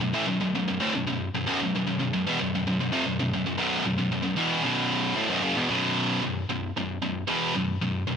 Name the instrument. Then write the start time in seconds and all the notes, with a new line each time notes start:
distorted electric guitar
0.00 B1 F#2
0.13 A2 E3
0.27 B1 F#2
0.40 B1 F#2
0.55 B1 F#2
0.68 B1 F#2
0.80 D2 A2
0.94 B1 F#2
1.07 B1 F#2
1.35 B1 F#2
1.46 B1 F#2
1.61 B1 F#2
1.75 B1 F#2
1.87 B1 F#2
1.99 B1 F#2
2.13 B1 F#2
2.27 E2 B2
2.41 B1 F#2
2.55 B1 F#2
2.67 B1 F#2
2.80 B1 F#2
2.92 F2 C3
3.06 B1 F#2
3.19 B1 F#2
3.34 B1 F#2
3.46 B1 F#2
3.58 B1 F#2 B2
3.86 B1 F#2
3.98 B1 F#2
4.12 B1 F#2
4.23 B1 F#2
4.37 E2 B2 E3
4.63 B1 F#2 B2
5.15 D2 A2
5.29 B1 F#2
5.43 F#2 C#3
5.56 E2 B2
5.70 B1 F#2 B2
6.23 B1 F#2
6.50 B1 F#2
6.77 B1 F#2
7.02 B1 F#2
7.27 E2 B2 E3
7.55 B1 F#2
7.82 B1 F#2
8.07 B1 F#2